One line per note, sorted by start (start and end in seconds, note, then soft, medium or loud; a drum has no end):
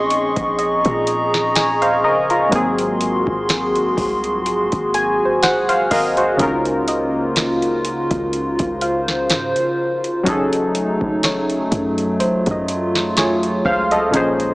0.00 0.33 A#1 loud
0.00 2.47 A#2 medium
0.00 2.47 F3 medium
0.00 2.48 C4 medium
0.00 2.49 C#4 medium
0.00 2.49 D#4 medium
0.00 1.56 G#4 medium
0.00 2.48 G#4 medium
0.00 2.48 D#5 medium
0.00 0.57 C6 medium
0.00 2.48 C#6 medium
0.10 closed hi-hat medium
0.36 0.83 A#1 loud
0.36 kick loud
0.36 closed hi-hat medium
0.59 1.53 D#5 medium
0.59 2.50 A#5 medium
0.59 closed hi-hat medium
0.85 2.06 A#2 loud
0.85 kick loud
0.85 closed hi-hat medium
1.07 closed hi-hat medium
1.34 snare medium
1.55 1.81 D#5 medium
1.55 1.80 G#5 medium
1.55 snare loud
1.55 closed hi-hat medium
1.82 2.03 C5 medium
1.82 2.03 F5 medium
1.82 closed hi-hat soft
2.04 2.50 C#3 loud
2.04 2.29 A#4 medium
2.04 2.29 D#5 medium
2.30 2.76 F4 medium
2.30 2.76 A#4 medium
2.30 closed hi-hat medium
2.49 3.24 G#1 loud
2.49 6.34 G#2 medium
2.49 6.35 F#3 medium
2.49 6.35 A#3 medium
2.49 6.35 F#4 medium
2.49 6.36 G#4 medium
2.49 6.35 C6 medium
2.49 kick loud
2.49 closed hi-hat medium
2.54 6.36 C4 medium
2.54 5.40 G#4 medium
2.78 closed hi-hat medium
3.01 closed hi-hat medium
3.27 3.95 G#1 loud
3.27 kick loud
3.49 snare loud
3.49 closed hi-hat medium
3.75 closed hi-hat soft
3.97 4.48 C2 loud
3.97 kick medium
3.97 open hi-hat soft
4.24 closed hi-hat medium
4.46 4.71 A#1 loud
4.46 closed hi-hat medium
4.72 5.71 G#1 loud
4.72 kick medium
4.72 closed hi-hat medium
4.94 5.89 G#4 medium
4.94 5.39 G#5 medium
4.94 closed hi-hat medium
5.25 6.17 C5 medium
5.43 5.68 C5 medium
5.43 5.88 F#5 medium
5.43 snare loud
5.43 closed hi-hat medium
5.69 5.90 F#1 loud
5.69 5.90 C5 medium
5.69 5.90 F5 medium
5.69 closed hi-hat medium
5.91 6.38 G#1 loud
5.91 6.16 A#4 medium
5.91 6.16 D#5 medium
5.91 6.36 F5 medium
5.91 kick loud
5.91 open hi-hat medium
6.17 6.63 F#4 medium
6.17 6.63 C5 medium
6.17 closed hi-hat medium
6.37 8.07 C#2 loud
6.37 10.21 C#3 medium
6.37 10.22 C#3 medium
6.37 8.31 A#3 medium
6.37 10.22 C#4 medium
6.37 10.23 D#4 medium
6.37 10.22 F4 medium
6.37 kick loud
6.37 closed hi-hat medium
6.41 10.23 F4 medium
6.41 10.24 A#4 medium
6.65 closed hi-hat soft
6.88 7.83 D#5 medium
6.88 closed hi-hat medium
7.36 snare loud
7.36 closed hi-hat medium
7.62 closed hi-hat soft
7.85 closed hi-hat medium
8.11 8.57 C#2 loud
8.11 kick loud
8.11 closed hi-hat medium
8.33 10.25 C5 medium
8.33 closed hi-hat medium
8.59 9.32 C#2 loud
8.59 kick loud
8.59 closed hi-hat soft
8.81 9.76 F5 medium
8.81 closed hi-hat medium
9.08 snare medium
9.30 9.55 G#2 loud
9.30 snare loud
9.30 closed hi-hat medium
9.56 closed hi-hat medium
10.04 closed hi-hat medium
10.23 10.98 F#1 loud
10.23 13.60 F#3 medium
10.23 14.10 F#3 medium
10.23 14.10 A3 medium
10.23 13.60 C#4 medium
10.23 12.18 D#4 medium
10.23 13.61 D#4 medium
10.23 kick loud
10.23 closed hi-hat medium
10.28 13.14 G#4 medium
10.28 13.14 A4 medium
10.53 closed hi-hat medium
10.75 closed hi-hat medium
11.01 11.69 F#1 loud
11.01 kick loud
11.23 12.18 C#5 medium
11.23 snare loud
11.23 closed hi-hat medium
11.50 closed hi-hat soft
11.72 12.22 F#2 loud
11.72 kick medium
11.72 closed hi-hat medium
11.98 closed hi-hat medium
12.20 12.45 A1 loud
12.20 14.12 F4 medium
12.20 13.14 C5 medium
12.20 closed hi-hat medium
12.46 13.62 F#2 loud
12.46 kick loud
12.46 closed hi-hat medium
12.51 13.43 D#5 medium
12.68 closed hi-hat medium
12.95 snare medium
13.17 13.63 G#4 medium
13.17 13.63 C#5 medium
13.17 snare loud
13.17 closed hi-hat medium
13.43 closed hi-hat soft
13.65 14.12 C#2 loud
13.65 13.90 C5 medium
13.65 13.90 F5 medium
13.65 kick loud
13.91 14.38 A4 medium
13.91 14.37 D#5 medium
13.91 closed hi-hat medium
14.11 14.54 A#1 loud
14.11 14.54 A#2 medium
14.11 14.54 F3 medium
14.11 14.54 G#3 medium
14.11 14.54 A#3 medium
14.11 14.54 C#4 medium
14.11 14.54 D#4 medium
14.11 kick loud
14.11 closed hi-hat medium
14.16 14.54 G#4 medium
14.16 14.54 C5 medium
14.40 closed hi-hat medium